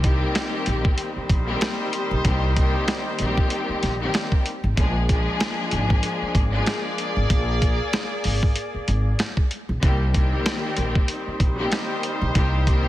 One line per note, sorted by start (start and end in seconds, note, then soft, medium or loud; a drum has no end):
0.00 0.20 C2 loud
0.00 1.34 D#3 loud
0.00 1.34 G3 medium
0.00 1.35 A#3 medium
0.00 1.35 C4 medium
0.00 1.35 G4 loud
0.00 kick loud
0.00 closed hi-hat medium
0.35 cross-stick medium
0.35 snare loud
0.35 closed hi-hat medium
0.66 0.91 A#1 medium
0.66 closed hi-hat medium
0.85 kick medium
0.98 4.42 G3 medium
0.98 4.42 D#4 medium
0.98 4.42 C5 medium
0.98 closed hi-hat loud
1.16 muted upright bass stroke soft
1.29 1.53 A#1 medium
1.29 kick loud
1.29 closed hi-hat medium
1.47 2.05 D#3 medium
1.47 2.05 G3 medium
1.47 2.05 A#3 medium
1.47 2.05 C4 medium
1.47 2.06 G4 loud
1.61 cross-stick loud
1.61 snare loud
1.61 closed hi-hat medium
1.93 closed hi-hat medium
2.11 2.21 A#1 medium
2.24 2.72 C2 loud
2.24 2.54 D#3 medium
2.24 2.54 G3 medium
2.24 2.54 A#3 medium
2.24 2.54 C4 medium
2.24 2.54 G4 loud
2.24 kick loud
2.24 closed hi-hat medium
2.57 3.15 D#3 loud
2.57 3.15 G3 medium
2.57 3.16 A#3 medium
2.57 3.16 C4 medium
2.57 3.16 G4 loud
2.57 kick medium
2.57 closed hi-hat medium
2.88 cross-stick medium
2.88 snare loud
2.88 closed hi-hat medium
3.19 3.43 A#1 medium
3.19 3.93 D#3 loud
3.19 3.94 G3 medium
3.19 3.94 A#3 medium
3.19 3.94 C4 medium
3.19 3.94 G4 loud
3.19 closed hi-hat medium
3.38 kick medium
3.50 closed hi-hat loud
3.69 muted upright bass stroke soft
3.83 4.07 A#1 medium
3.83 snare soft
3.83 closed hi-hat medium
4.00 4.42 D#3 medium
4.00 4.42 G3 medium
4.00 4.43 A#3 medium
4.00 4.43 C4 medium
4.00 4.43 G4 loud
4.14 cross-stick loud
4.14 snare loud
4.14 closed hi-hat medium
4.32 kick medium
4.46 closed hi-hat medium
4.64 4.74 G#1 medium
4.77 5.25 A#1 loud
4.77 5.07 F3 loud
4.77 5.07 G#3 medium
4.77 5.07 A#3 medium
4.77 5.07 D4 medium
4.77 5.07 G#4 loud
4.77 kick loud
4.77 closed hi-hat medium
5.09 6.41 F3 loud
5.09 6.41 G#3 loud
5.09 6.41 A#3 medium
5.09 6.41 D4 medium
5.09 6.41 G#4 loud
5.09 kick loud
5.09 closed hi-hat medium
5.40 cross-stick medium
5.40 snare loud
5.40 closed hi-hat medium
5.71 5.96 G#1 medium
5.71 closed hi-hat medium
5.90 kick medium
6.03 9.47 A#3 medium
6.03 9.47 G#4 medium
6.03 9.47 D5 loud
6.03 closed hi-hat loud
6.22 muted upright bass stroke soft
6.35 6.59 G#1 medium
6.35 kick loud
6.35 closed hi-hat medium
6.51 7.10 F3 loud
6.51 7.10 G#3 medium
6.51 7.10 A#3 medium
6.51 7.10 D4 loud
6.51 7.11 G#4 loud
6.66 cross-stick loud
6.66 snare loud
6.66 closed hi-hat medium
6.98 closed hi-hat medium
7.16 7.27 G#1 medium
7.30 7.78 A#1 loud
7.30 kick loud
7.30 closed hi-hat medium
7.62 kick medium
7.62 closed hi-hat medium
7.93 cross-stick medium
7.93 snare loud
7.93 closed hi-hat medium
8.24 8.49 G#1 medium
8.24 open hi-hat medium
8.43 kick loud
8.56 closed hi-hat loud
8.74 muted upright bass stroke soft
8.88 9.12 G#1 medium
8.88 closed hi-hat medium
9.19 cross-stick loud
9.19 snare loud
9.19 closed hi-hat medium
9.37 kick medium
9.51 closed hi-hat medium
9.69 9.79 A#1 medium
9.82 10.30 C2 loud
9.82 10.12 D#3 loud
9.82 10.12 G3 medium
9.82 10.12 A#3 medium
9.82 10.12 C4 medium
9.82 10.13 G4 loud
9.82 kick loud
9.82 closed hi-hat medium
10.13 11.45 D#3 loud
10.13 11.45 G3 medium
10.13 11.45 A#3 medium
10.13 11.45 C4 loud
10.13 11.46 G4 loud
10.13 kick loud
10.13 closed hi-hat medium
10.46 cross-stick medium
10.46 snare loud
10.46 closed hi-hat medium
10.77 11.01 A#1 medium
10.77 closed hi-hat medium
10.95 kick medium
11.08 12.88 G3 medium
11.08 12.88 D#4 medium
11.08 12.88 C5 medium
11.08 closed hi-hat loud
11.27 muted upright bass stroke soft
11.40 11.64 A#1 medium
11.40 kick loud
11.40 closed hi-hat medium
11.57 12.15 D#3 medium
11.57 12.16 G3 medium
11.57 12.16 A#3 medium
11.57 12.16 C4 medium
11.57 12.16 G4 loud
11.72 cross-stick loud
11.72 snare loud
11.72 closed hi-hat medium
12.03 closed hi-hat medium
12.22 12.32 A#1 medium
12.34 12.83 C2 loud
12.34 12.64 D#3 medium
12.34 12.64 G3 medium
12.34 12.64 A#3 medium
12.34 12.65 C4 medium
12.34 12.65 G4 loud
12.34 kick loud
12.34 closed hi-hat medium
12.67 12.88 D#3 loud
12.67 12.88 G3 medium
12.67 12.88 A#3 medium
12.67 12.88 C4 medium
12.67 12.88 G4 loud
12.67 kick loud
12.67 closed hi-hat medium